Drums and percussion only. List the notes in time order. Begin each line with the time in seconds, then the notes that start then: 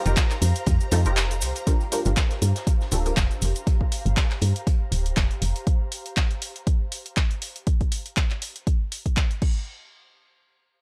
0.06 closed hi-hat, cabasa
0.16 kick, snare, clap, closed hi-hat, cabasa
0.31 snare, clap, closed hi-hat, cabasa
0.42 closed hi-hat, open hi-hat, cabasa
0.55 closed hi-hat, cabasa
0.66 kick, closed hi-hat, cabasa
0.80 closed hi-hat, cabasa
0.91 closed hi-hat, open hi-hat, cabasa
1.05 closed hi-hat, cabasa
1.16 snare, clap, closed hi-hat, cabasa
1.31 closed hi-hat, cabasa
1.41 closed hi-hat, open hi-hat, cabasa
1.55 closed hi-hat, cabasa
1.67 kick, closed hi-hat, cabasa
1.80 closed hi-hat, cabasa
1.92 closed hi-hat, open hi-hat, cabasa
2.05 closed hi-hat, cabasa
2.16 kick, snare, clap, closed hi-hat, cabasa
2.31 snare, closed hi-hat, cabasa
2.42 closed hi-hat, open hi-hat, cabasa
2.55 snare, closed hi-hat, cabasa
2.67 kick, closed hi-hat, cabasa
2.81 snare, cabasa
2.91 closed hi-hat, open hi-hat, cabasa
3.06 closed hi-hat, cabasa
3.16 kick, snare, clap, closed hi-hat, cabasa
3.31 closed hi-hat, cabasa
3.42 closed hi-hat, open hi-hat, cabasa
3.55 closed hi-hat, cabasa
3.67 kick, closed hi-hat
3.81 kick
3.92 closed hi-hat, open hi-hat
4.06 closed hi-hat
4.16 kick, snare, clap, closed hi-hat
4.31 snare, clap, closed hi-hat
4.41 closed hi-hat, open hi-hat
4.56 closed hi-hat
4.67 kick, closed hi-hat
4.92 closed hi-hat, open hi-hat
5.06 closed hi-hat
5.16 kick, snare, clap, closed hi-hat
5.31 closed hi-hat
5.42 closed hi-hat, open hi-hat
5.56 closed hi-hat
5.67 kick, closed hi-hat
5.92 open hi-hat
6.06 closed hi-hat
6.17 kick, clap, closed hi-hat
6.31 closed hi-hat
6.42 open hi-hat
6.56 closed hi-hat
6.67 kick, closed hi-hat
6.92 open hi-hat
7.06 closed hi-hat
7.17 kick, clap, closed hi-hat
7.31 closed hi-hat
7.42 open hi-hat
7.56 closed hi-hat
7.67 kick, closed hi-hat
7.81 kick, closed hi-hat
7.92 open hi-hat
8.06 closed hi-hat
8.17 kick, clap, closed hi-hat
8.31 clap, closed hi-hat
8.42 open hi-hat
8.56 closed hi-hat
8.67 kick, closed hi-hat
8.92 open hi-hat
9.06 kick, closed hi-hat
9.17 kick, clap, closed hi-hat
9.31 closed hi-hat
9.42 kick, crash